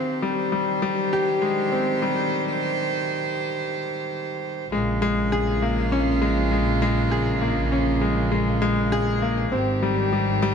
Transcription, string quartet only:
0.00 4.69 D#3 medium
0.00 4.69 G4 medium
0.00 4.69 C5 medium
4.72 9.49 C#3 medium
4.72 9.49 G#3 medium
4.72 9.48 A#3 medium
4.72 9.49 F4 medium
9.52 10.54 D#3 medium
9.52 10.54 C4 medium
9.52 10.54 G4 medium

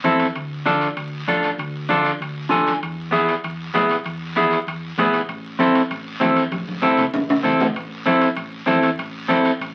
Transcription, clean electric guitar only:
0.04 0.26 C4 medium
0.04 0.26 E4 medium
0.04 0.26 A4 medium
0.66 0.87 D4 medium
0.66 0.88 F4 medium
0.66 0.88 A4 medium
1.28 1.49 D4 medium
1.28 1.49 F4 medium
1.28 1.50 A4 medium
1.89 2.11 D4 medium
1.89 2.11 F4 medium
1.89 2.11 A4 medium
2.49 2.72 D4 medium
2.49 2.72 F4 medium
2.49 2.72 A4 medium
2.49 2.79 G#5 medium
3.11 3.34 B3 medium
3.11 3.34 E4 medium
3.11 3.34 G#4 medium
3.74 3.96 B3 medium
3.74 3.96 E4 medium
3.74 3.96 G#4 medium
4.36 4.58 B3 medium
4.36 4.58 E4 medium
4.36 4.58 G#4 medium
4.98 5.20 B3 medium
4.98 5.20 E4 medium
4.98 5.20 G#4 medium
5.59 5.81 C4 medium
5.59 5.81 E4 medium
5.59 5.81 A4 medium
6.20 6.42 C4 medium
6.20 6.42 E4 medium
6.20 6.43 A4 medium
6.82 7.04 C4 medium
6.82 7.04 E4 medium
6.82 7.04 A4 medium
7.43 7.65 C4 medium
7.43 7.66 E4 medium
7.43 7.66 A4 medium
8.06 8.27 C4 medium
8.06 8.28 E4 medium
8.06 8.28 A4 medium
8.66 8.88 C4 medium
8.66 8.89 E4 medium
8.66 8.89 A4 medium
9.28 9.50 C4 medium
9.28 9.51 E4 medium
9.28 9.51 A4 medium

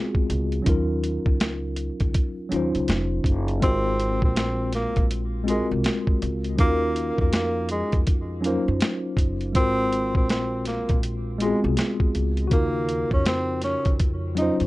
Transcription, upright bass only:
0.30 0.60 C#2 medium
0.67 1.17 D#2 medium
1.26 1.88 C#2 medium
2.01 2.12 C#2 medium
2.52 2.71 D#2 medium
2.75 2.86 C#2 medium
2.89 3.20 F1 medium
3.24 3.63 F#1 medium
3.63 4.23 G#1 medium
4.23 4.85 A#1 medium
4.97 5.59 A#1 medium
5.71 5.83 C2 medium
6.22 6.53 C#2 medium
6.59 7.10 D#2 medium
7.19 7.81 F2 medium
7.93 8.55 F2 medium
8.68 8.79 F#2 medium
9.17 9.56 F#1 medium
9.56 10.15 G#1 loud
10.15 10.77 A#1 medium
10.90 11.52 A#1 medium
11.64 11.75 C2 loud
12.15 12.46 C#2 medium
12.52 13.02 D#2 medium
13.11 13.74 F2 medium
13.86 14.48 F2 medium
14.61 14.67 F#2 medium

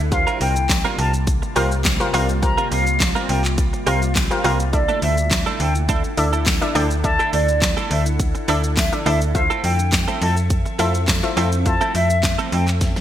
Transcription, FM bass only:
0.00 0.27 D2 loud
0.41 0.84 C2 medium
0.98 1.42 C2 loud
1.56 2.00 C2 medium
2.14 2.57 C2 loud
2.71 3.15 C2 medium
3.29 3.73 C2 loud
3.87 4.30 C2 loud
4.44 4.88 C2 loud
5.02 5.46 D2 medium
5.60 6.04 D2 loud
6.18 6.61 D2 medium
6.75 7.19 D2 loud
7.33 7.77 D2 medium
7.91 8.34 D2 loud
8.48 8.92 D2 medium
9.06 9.50 D2 loud
9.64 10.07 F2 loud
10.21 10.65 F2 loud
10.79 11.23 F2 medium
11.37 11.80 F2 loud
11.95 12.38 F2 medium
12.52 12.96 F2 loud

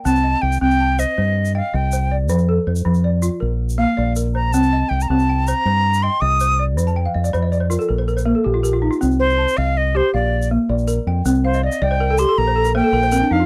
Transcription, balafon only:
0.00 0.24 G5 medium
0.05 0.43 C4 medium
0.24 0.80 D#5 medium
0.42 0.99 G5 medium
0.61 0.99 C4 medium
0.80 1.36 A5 medium
0.99 1.17 C5 medium
1.18 1.74 C5 medium
1.55 1.72 D#5 medium
1.55 2.11 G5 medium
1.74 2.30 D#5 medium
1.93 2.30 C5 medium
2.11 2.48 D5 medium
2.30 2.67 F3 medium
2.49 3.04 A4 medium
2.67 3.23 C5 medium
2.85 3.23 F3 medium
3.04 3.60 D5 medium
3.22 3.41 F4 medium
3.40 3.97 A#4 medium
3.78 4.16 A#3 medium
3.78 4.34 F5 medium
3.97 4.53 D5 medium
4.16 4.54 A#4 medium
4.35 4.72 C5 medium
4.54 4.91 C4 medium
4.73 5.29 D#5 medium
4.91 5.28 G5 medium
5.10 5.47 C4 medium
5.29 5.85 G5 medium
5.48 5.65 C5 medium
5.66 6.22 C5 medium
6.03 6.21 D#5 medium
6.03 6.59 G5 medium
6.22 6.78 D#5 medium
6.41 6.78 C5 medium
6.59 6.96 D5 medium
6.77 7.15 F3 medium
6.87 7.04 A5 medium
6.96 7.14 G5 medium
7.06 7.23 F5 medium
7.14 7.32 D#5 medium
7.24 7.42 D5 medium
7.33 7.71 F3 medium
7.33 7.51 C5 medium
7.42 7.60 D#5 medium
7.52 7.70 D5 medium
7.60 7.78 C5 medium
7.70 7.89 F4 medium
7.70 7.87 A#4 medium
7.79 7.97 A4 medium
7.89 8.06 A#4 medium
7.98 8.16 C5 medium
8.08 8.24 A#4 medium
8.17 8.35 C5 medium
8.26 8.64 A#3 medium
8.26 8.44 A#4 medium
8.35 8.53 A4 medium
8.44 8.62 G4 medium
8.54 8.72 F4 medium
8.63 8.81 G4 medium
8.63 9.01 A#4 medium
8.73 8.89 F4 medium
8.82 9.00 D#4 medium
8.91 9.09 F4 medium
9.01 9.39 C4 medium
9.38 9.95 A5 medium
9.57 9.94 D#5 medium
9.95 10.14 G4 medium
10.14 10.70 F5 medium
10.51 10.88 A#3 medium
10.69 11.26 D5 medium
10.88 11.25 A#4 medium
11.07 11.45 G5 medium
11.26 11.63 C4 medium
11.45 11.62 F5 medium
11.55 11.71 D#5 medium
11.64 11.81 D5 medium
11.72 11.81 D#5 medium
11.82 11.99 D5 medium
11.82 12.19 D#5 medium
11.91 12.08 C5 medium
12.00 12.18 A#4 medium
12.10 12.28 A4 medium
12.19 12.37 G4 medium
12.29 12.46 A4 medium
12.39 12.56 A#4 medium
12.47 12.65 C5 medium
12.56 12.74 A4 medium
12.65 12.83 A#4 medium
12.75 13.12 A#3 medium
12.75 12.92 C5 medium
12.84 13.02 A4 medium
12.93 13.11 A#4 medium
13.03 13.20 C5 medium
13.12 13.30 C4 medium
13.12 13.46 A#4 medium
13.21 13.39 D4 medium
13.31 13.46 D#4 medium
13.40 13.46 F4 medium

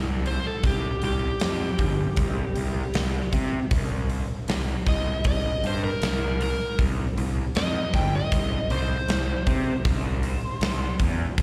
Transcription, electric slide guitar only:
0.27 0.45 C5 medium
0.47 0.64 A4 medium
0.66 1.02 G4 medium
1.05 3.30 G4 medium
4.88 5.25 D#5 medium
5.27 5.64 D#5 medium
5.67 5.84 C5 medium
5.84 6.39 A#4 medium
6.43 6.79 A#4 loud
7.57 7.93 D#5 loud
7.95 8.13 G5 medium
8.15 8.70 D#5 medium
8.71 10.97 C5 medium

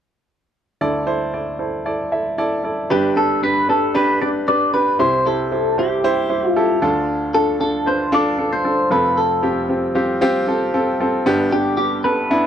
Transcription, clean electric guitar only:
2.91 3.15 G4 medium
3.17 3.41 A4 medium
3.43 3.67 B4 medium
3.70 3.95 A4 medium
3.96 4.21 B4 medium
4.22 4.29 D5 loud
4.48 4.73 D5 medium
4.74 4.99 B4 medium
5.00 5.26 C5 medium
5.27 5.79 A4 medium
5.79 6.49 G4 medium
6.49 6.79 F4 medium
7.34 7.60 A4 medium
7.61 7.87 A4 loud
7.87 8.11 C5 medium
8.14 8.52 D5 loud
8.53 8.89 C5 loud
8.92 9.18 B4 medium
9.17 9.66 A4 medium
11.52 11.76 G4 medium
11.77 12.05 G4 medium
12.04 12.47 B4 medium

